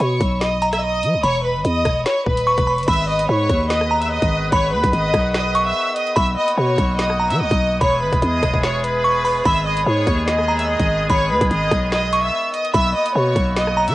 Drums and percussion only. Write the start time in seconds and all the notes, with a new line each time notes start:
0.00 closed hi-hat
0.21 kick, closed hi-hat
0.41 snare, closed hi-hat
0.62 closed hi-hat
0.73 cross-stick, closed hi-hat
1.03 closed hi-hat
1.23 closed hi-hat
1.65 closed hi-hat
1.85 kick, cross-stick, closed hi-hat
2.06 snare, closed hi-hat
2.26 kick
2.37 closed hi-hat
2.58 kick, closed hi-hat
2.78 closed hi-hat
2.83 closed hi-hat
2.88 kick, closed hi-hat, crash
2.93 closed hi-hat
3.19 closed hi-hat
3.49 kick, closed hi-hat
3.70 snare, closed hi-hat
3.81 cross-stick
4.02 closed hi-hat
4.22 kick, closed hi-hat
4.52 kick, closed hi-hat
4.84 kick, closed hi-hat
4.93 closed hi-hat
5.14 kick, cross-stick, closed hi-hat
5.34 snare
5.55 closed hi-hat
5.96 closed hi-hat
6.07 closed hi-hat
6.17 kick, closed hi-hat
6.48 closed hi-hat
6.78 kick, closed hi-hat
6.99 snare, closed hi-hat
7.10 cross-stick
7.30 closed hi-hat
7.51 kick, closed hi-hat
7.81 kick, closed hi-hat
8.13 kick, closed hi-hat
8.22 closed hi-hat
8.43 kick, cross-stick, closed hi-hat
8.54 kick
8.63 snare
8.84 closed hi-hat
9.25 open hi-hat
9.46 kick, closed hi-hat
9.77 closed hi-hat
10.07 kick, closed hi-hat
10.28 snare, closed hi-hat
10.39 cross-stick
10.59 closed hi-hat
10.80 kick, closed hi-hat
11.10 kick, closed hi-hat
11.41 kick, closed hi-hat
11.51 closed hi-hat
11.71 kick, cross-stick, closed hi-hat
11.92 snare
12.13 closed hi-hat
12.54 closed hi-hat
12.65 closed hi-hat
12.74 kick, closed hi-hat
13.06 closed hi-hat
13.36 kick, closed hi-hat
13.56 snare, closed hi-hat
13.67 cross-stick
13.88 closed hi-hat